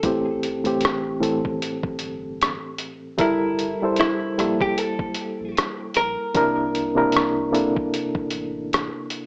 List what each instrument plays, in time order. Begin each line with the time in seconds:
Already playing: hollow-body jazz guitar A4
0.03 sub bass A1, reed electric piano A2 E3 C4 G4, kick, closed hi-hat
0.43 closed hi-hat
0.64 reed electric piano A2 E3 C4 G4, closed hi-hat
0.81 closed hi-hat
0.85 cross-stick
1.20 reed electric piano A2 E3 C4 A4, closed hi-hat
1.45 kick
1.62 closed hi-hat
1.83 kick
1.99 sub bass G1, closed hi-hat
2.41 cross-stick, closed hi-hat
2.78 closed hi-hat
3.17 sub bass G1, reed electric piano G3 E4 A4 A#4, hollow-body jazz guitar E4, kick, closed hi-hat
3.59 closed hi-hat
3.82 reed electric piano G3 E4 A4 C5
3.96 hollow-body jazz guitar E4, closed hi-hat
4.01 cross-stick
4.38 sub bass A#1, reed electric piano G3 A#3 E4 A4, cross-stick, closed hi-hat
4.60 hollow-body jazz guitar G4, kick
4.78 hollow-body jazz guitar A4, closed hi-hat
4.99 kick
5.14 closed hi-hat
5.40 sub bass A#1
5.57 cross-stick, closed hi-hat
5.94 sub bass A#1, hollow-body jazz guitar A#4, closed hi-hat
6.34 sub bass C2, reed electric piano C3 A#3 D4 E4 A#4, kick, closed hi-hat
6.75 closed hi-hat
6.96 reed electric piano C3 A#3 D4 E4 A#4
7.12 closed hi-hat
7.17 cross-stick
7.52 reed electric piano C3 A#3 D4 E4 A4, closed hi-hat
7.76 kick
7.94 closed hi-hat
8.15 kick
8.31 sub bass A1, closed hi-hat
8.73 cross-stick, closed hi-hat
9.10 closed hi-hat